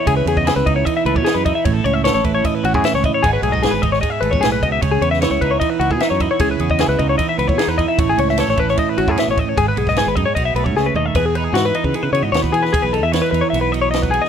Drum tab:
RD |x-x-x-x-x-x-x-x-|x-x-x-x-x-x-x-x-|x-x-x-x-x-x-x-x-|x-x-x-x-x-x-x-x-|
SD |----o-------o---|----o-------oo--|----oo-o----o---|---oo-------o---|
FT |----------------|----------------|----------------|----------------|
BD |o--o--o-o--o--o-|o-----o-o--o--o-|o--o--o-o--o--o-|o-----o-o--o--o-|

RD |x-x-x-x-x-x-x-x-|x-x-x-x-x-x-x-x-|x-x-x-x-x-x-----|x-x-x-x-x-x-x-x-|
SD |----o-------o---|---ooo-o----o---|---oo-------o---|----o-------o--o|
FT |----------------|----------------|--------------o-|----------------|
BD |o--o--o-o--o--o-|o-----o-o--o--o-|o--o--o-o--o----|o------o-----o--|

RD |x-x-x-x-x-x-x-x-|
SD |----o-------o--o|
FT |----------------|
BD |o------------o--|